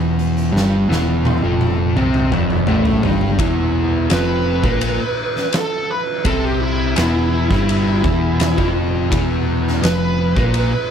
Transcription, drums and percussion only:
0, 0, Header, 1, 2, 480
1, 0, Start_track
1, 0, Tempo, 715137
1, 363, Time_signature, 4, 2, 24, 8
1, 7321, End_track
2, 0, Start_track
2, 0, Title_t, "Drums"
2, 128, Note_on_c, 9, 42, 79
2, 195, Note_off_c, 9, 42, 0
2, 248, Note_on_c, 9, 42, 47
2, 315, Note_off_c, 9, 42, 0
2, 380, Note_on_c, 9, 38, 69
2, 447, Note_off_c, 9, 38, 0
2, 617, Note_on_c, 9, 38, 76
2, 684, Note_off_c, 9, 38, 0
2, 840, Note_on_c, 9, 48, 88
2, 907, Note_off_c, 9, 48, 0
2, 1080, Note_on_c, 9, 48, 90
2, 1148, Note_off_c, 9, 48, 0
2, 1320, Note_on_c, 9, 47, 90
2, 1388, Note_off_c, 9, 47, 0
2, 1438, Note_on_c, 9, 47, 83
2, 1505, Note_off_c, 9, 47, 0
2, 1557, Note_on_c, 9, 45, 109
2, 1625, Note_off_c, 9, 45, 0
2, 1680, Note_on_c, 9, 45, 86
2, 1747, Note_off_c, 9, 45, 0
2, 1792, Note_on_c, 9, 45, 112
2, 1859, Note_off_c, 9, 45, 0
2, 1915, Note_on_c, 9, 43, 93
2, 1982, Note_off_c, 9, 43, 0
2, 2036, Note_on_c, 9, 43, 111
2, 2103, Note_off_c, 9, 43, 0
2, 2156, Note_on_c, 9, 43, 87
2, 2223, Note_off_c, 9, 43, 0
2, 2274, Note_on_c, 9, 36, 113
2, 2278, Note_on_c, 9, 53, 77
2, 2341, Note_off_c, 9, 36, 0
2, 2345, Note_off_c, 9, 53, 0
2, 2751, Note_on_c, 9, 53, 81
2, 2762, Note_on_c, 9, 38, 119
2, 2818, Note_off_c, 9, 53, 0
2, 2829, Note_off_c, 9, 38, 0
2, 3112, Note_on_c, 9, 36, 113
2, 3179, Note_off_c, 9, 36, 0
2, 3230, Note_on_c, 9, 53, 94
2, 3297, Note_off_c, 9, 53, 0
2, 3598, Note_on_c, 9, 38, 32
2, 3665, Note_off_c, 9, 38, 0
2, 3709, Note_on_c, 9, 53, 88
2, 3719, Note_on_c, 9, 38, 118
2, 3776, Note_off_c, 9, 53, 0
2, 3786, Note_off_c, 9, 38, 0
2, 4194, Note_on_c, 9, 53, 83
2, 4195, Note_on_c, 9, 36, 112
2, 4261, Note_off_c, 9, 53, 0
2, 4262, Note_off_c, 9, 36, 0
2, 4673, Note_on_c, 9, 53, 89
2, 4684, Note_on_c, 9, 38, 119
2, 4740, Note_off_c, 9, 53, 0
2, 4751, Note_off_c, 9, 38, 0
2, 5038, Note_on_c, 9, 36, 105
2, 5048, Note_on_c, 9, 38, 35
2, 5105, Note_off_c, 9, 36, 0
2, 5115, Note_off_c, 9, 38, 0
2, 5161, Note_on_c, 9, 53, 79
2, 5228, Note_off_c, 9, 53, 0
2, 5397, Note_on_c, 9, 36, 115
2, 5465, Note_off_c, 9, 36, 0
2, 5636, Note_on_c, 9, 53, 85
2, 5647, Note_on_c, 9, 38, 122
2, 5703, Note_off_c, 9, 53, 0
2, 5714, Note_off_c, 9, 38, 0
2, 5759, Note_on_c, 9, 36, 107
2, 5826, Note_off_c, 9, 36, 0
2, 6120, Note_on_c, 9, 36, 103
2, 6123, Note_on_c, 9, 53, 79
2, 6187, Note_off_c, 9, 36, 0
2, 6190, Note_off_c, 9, 53, 0
2, 6494, Note_on_c, 9, 38, 32
2, 6562, Note_off_c, 9, 38, 0
2, 6601, Note_on_c, 9, 53, 86
2, 6611, Note_on_c, 9, 38, 120
2, 6668, Note_off_c, 9, 53, 0
2, 6678, Note_off_c, 9, 38, 0
2, 6957, Note_on_c, 9, 36, 111
2, 7024, Note_off_c, 9, 36, 0
2, 7074, Note_on_c, 9, 53, 84
2, 7141, Note_off_c, 9, 53, 0
2, 7321, End_track
0, 0, End_of_file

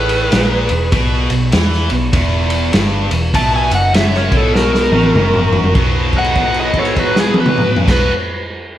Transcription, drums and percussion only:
0, 0, Header, 1, 2, 480
1, 0, Start_track
1, 0, Tempo, 604230
1, 736, Time_signature, 4, 2, 24, 8
1, 6975, End_track
2, 0, Start_track
2, 0, Title_t, "Drums"
2, 73, Note_on_c, 9, 51, 64
2, 152, Note_off_c, 9, 51, 0
2, 252, Note_on_c, 9, 51, 76
2, 260, Note_on_c, 9, 38, 101
2, 332, Note_off_c, 9, 51, 0
2, 340, Note_off_c, 9, 38, 0
2, 547, Note_on_c, 9, 51, 66
2, 626, Note_off_c, 9, 51, 0
2, 731, Note_on_c, 9, 51, 81
2, 733, Note_on_c, 9, 36, 99
2, 810, Note_off_c, 9, 51, 0
2, 813, Note_off_c, 9, 36, 0
2, 1032, Note_on_c, 9, 51, 66
2, 1111, Note_off_c, 9, 51, 0
2, 1210, Note_on_c, 9, 51, 81
2, 1217, Note_on_c, 9, 38, 98
2, 1289, Note_off_c, 9, 51, 0
2, 1297, Note_off_c, 9, 38, 0
2, 1370, Note_on_c, 9, 38, 30
2, 1450, Note_off_c, 9, 38, 0
2, 1507, Note_on_c, 9, 51, 63
2, 1587, Note_off_c, 9, 51, 0
2, 1692, Note_on_c, 9, 51, 94
2, 1693, Note_on_c, 9, 36, 107
2, 1772, Note_off_c, 9, 36, 0
2, 1772, Note_off_c, 9, 51, 0
2, 1987, Note_on_c, 9, 51, 77
2, 2066, Note_off_c, 9, 51, 0
2, 2168, Note_on_c, 9, 51, 83
2, 2176, Note_on_c, 9, 38, 98
2, 2247, Note_off_c, 9, 51, 0
2, 2255, Note_off_c, 9, 38, 0
2, 2471, Note_on_c, 9, 51, 76
2, 2551, Note_off_c, 9, 51, 0
2, 2652, Note_on_c, 9, 36, 100
2, 2656, Note_on_c, 9, 51, 93
2, 2731, Note_off_c, 9, 36, 0
2, 2736, Note_off_c, 9, 51, 0
2, 2950, Note_on_c, 9, 51, 75
2, 3029, Note_off_c, 9, 51, 0
2, 3133, Note_on_c, 9, 51, 83
2, 3141, Note_on_c, 9, 38, 108
2, 3212, Note_off_c, 9, 51, 0
2, 3220, Note_off_c, 9, 38, 0
2, 3290, Note_on_c, 9, 38, 29
2, 3369, Note_off_c, 9, 38, 0
2, 3429, Note_on_c, 9, 36, 89
2, 3430, Note_on_c, 9, 51, 67
2, 3509, Note_off_c, 9, 36, 0
2, 3509, Note_off_c, 9, 51, 0
2, 3617, Note_on_c, 9, 38, 62
2, 3696, Note_off_c, 9, 38, 0
2, 3768, Note_on_c, 9, 38, 50
2, 3848, Note_off_c, 9, 38, 0
2, 3909, Note_on_c, 9, 48, 73
2, 3989, Note_off_c, 9, 48, 0
2, 4000, Note_on_c, 9, 48, 63
2, 4079, Note_off_c, 9, 48, 0
2, 4093, Note_on_c, 9, 47, 75
2, 4172, Note_off_c, 9, 47, 0
2, 4241, Note_on_c, 9, 45, 70
2, 4321, Note_off_c, 9, 45, 0
2, 4390, Note_on_c, 9, 43, 86
2, 4469, Note_off_c, 9, 43, 0
2, 4479, Note_on_c, 9, 43, 85
2, 4559, Note_off_c, 9, 43, 0
2, 4567, Note_on_c, 9, 49, 78
2, 4570, Note_on_c, 9, 36, 99
2, 4646, Note_off_c, 9, 49, 0
2, 4650, Note_off_c, 9, 36, 0
2, 4869, Note_on_c, 9, 36, 59
2, 4869, Note_on_c, 9, 49, 42
2, 4948, Note_off_c, 9, 49, 0
2, 4949, Note_off_c, 9, 36, 0
2, 4961, Note_on_c, 9, 57, 47
2, 5040, Note_off_c, 9, 57, 0
2, 5047, Note_on_c, 9, 49, 43
2, 5051, Note_on_c, 9, 36, 61
2, 5127, Note_off_c, 9, 49, 0
2, 5130, Note_off_c, 9, 36, 0
2, 5198, Note_on_c, 9, 57, 47
2, 5277, Note_off_c, 9, 57, 0
2, 5351, Note_on_c, 9, 36, 59
2, 5351, Note_on_c, 9, 49, 47
2, 5431, Note_off_c, 9, 36, 0
2, 5431, Note_off_c, 9, 49, 0
2, 5442, Note_on_c, 9, 57, 51
2, 5521, Note_off_c, 9, 57, 0
2, 5532, Note_on_c, 9, 49, 52
2, 5534, Note_on_c, 9, 36, 67
2, 5611, Note_off_c, 9, 49, 0
2, 5613, Note_off_c, 9, 36, 0
2, 5690, Note_on_c, 9, 38, 83
2, 5769, Note_off_c, 9, 38, 0
2, 5832, Note_on_c, 9, 48, 87
2, 5911, Note_off_c, 9, 48, 0
2, 5925, Note_on_c, 9, 47, 91
2, 6005, Note_off_c, 9, 47, 0
2, 6018, Note_on_c, 9, 45, 86
2, 6098, Note_off_c, 9, 45, 0
2, 6168, Note_on_c, 9, 43, 94
2, 6247, Note_off_c, 9, 43, 0
2, 6258, Note_on_c, 9, 36, 98
2, 6261, Note_on_c, 9, 49, 100
2, 6269, Note_on_c, 9, 38, 97
2, 6337, Note_off_c, 9, 36, 0
2, 6341, Note_off_c, 9, 49, 0
2, 6349, Note_off_c, 9, 38, 0
2, 6975, End_track
0, 0, End_of_file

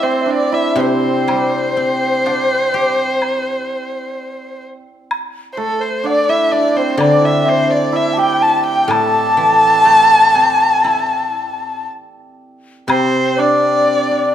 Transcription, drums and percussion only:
0, 0, Header, 1, 2, 480
1, 0, Start_track
1, 0, Tempo, 988468
1, 617, Time_signature, 4, 2, 24, 8
1, 1092, Tempo, 952381
1, 4932, Tempo, 1003344
1, 7075, End_track
2, 0, Start_track
2, 0, Title_t, "Drums"
2, 623, Note_on_c, 9, 76, 46
2, 672, Note_off_c, 9, 76, 0
2, 1100, Note_on_c, 9, 77, 36
2, 1150, Note_off_c, 9, 77, 0
2, 1581, Note_on_c, 9, 76, 47
2, 1631, Note_off_c, 9, 76, 0
2, 2534, Note_on_c, 9, 76, 55
2, 2584, Note_off_c, 9, 76, 0
2, 3015, Note_on_c, 9, 77, 39
2, 3065, Note_off_c, 9, 77, 0
2, 3489, Note_on_c, 9, 76, 48
2, 3540, Note_off_c, 9, 76, 0
2, 4448, Note_on_c, 9, 76, 52
2, 4499, Note_off_c, 9, 76, 0
2, 5406, Note_on_c, 9, 76, 49
2, 5454, Note_off_c, 9, 76, 0
2, 6381, Note_on_c, 9, 76, 64
2, 6429, Note_off_c, 9, 76, 0
2, 7075, End_track
0, 0, End_of_file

